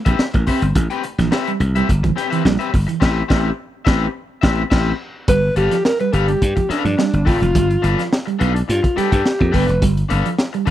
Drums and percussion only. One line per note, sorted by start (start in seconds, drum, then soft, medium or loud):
0.06 kick medium
0.06 closed hi-hat medium
0.19 snare loud
0.34 kick medium
0.34 closed hi-hat soft
0.47 kick medium
0.47 open hi-hat medium
0.62 closed hi-hat medium
0.75 kick loud
0.75 closed hi-hat loud
0.90 closed hi-hat soft
1.03 closed hi-hat medium
1.19 snare soft
1.19 closed hi-hat soft
1.32 snare loud
1.47 closed hi-hat soft
1.60 closed hi-hat medium
1.76 closed hi-hat soft
1.89 kick medium
1.89 closed hi-hat medium
2.04 kick loud
2.04 closed hi-hat soft
2.17 snare soft
2.17 closed hi-hat medium
2.32 closed hi-hat medium
2.46 snare loud
2.61 closed hi-hat soft
2.74 kick medium
2.74 open hi-hat medium
2.89 closed hi-hat medium
3.02 kick loud
3.02 snare loud
3.02 crash medium
3.30 kick loud
3.30 snare loud
3.87 kick loud
3.87 snare loud
4.43 kick loud
4.43 snare loud
4.71 kick loud
4.71 snare medium
4.71 crash medium
5.28 kick loud
5.28 closed hi-hat loud
5.56 closed hi-hat medium
5.71 snare soft
5.71 closed hi-hat soft
5.85 snare loud
6.00 closed hi-hat soft
6.13 closed hi-hat medium
6.28 closed hi-hat soft
6.42 kick medium
6.42 closed hi-hat medium
6.57 kick medium
6.57 closed hi-hat soft
6.70 snare soft
6.70 closed hi-hat medium
6.85 closed hi-hat soft
6.99 snare medium
7.14 closed hi-hat soft
7.27 kick medium
7.27 open hi-hat medium
7.42 closed hi-hat soft
7.55 kick loud
7.55 closed hi-hat loud
7.71 closed hi-hat soft
7.84 closed hi-hat medium
7.99 snare soft
7.99 closed hi-hat soft
8.13 snare loud
8.28 closed hi-hat soft
8.41 closed hi-hat medium
8.56 closed hi-hat medium
8.70 closed hi-hat medium
8.84 kick loud
8.84 closed hi-hat soft
8.97 snare soft
8.97 closed hi-hat medium
9.12 kick medium
9.12 closed hi-hat soft
9.26 snare loud
9.41 kick medium
9.54 kick medium
9.54 open hi-hat medium
9.69 closed hi-hat medium
9.82 kick loud
9.82 closed hi-hat loud
9.97 closed hi-hat soft
10.10 closed hi-hat medium
10.26 closed hi-hat soft
10.39 snare loud
10.54 closed hi-hat soft
10.67 closed hi-hat medium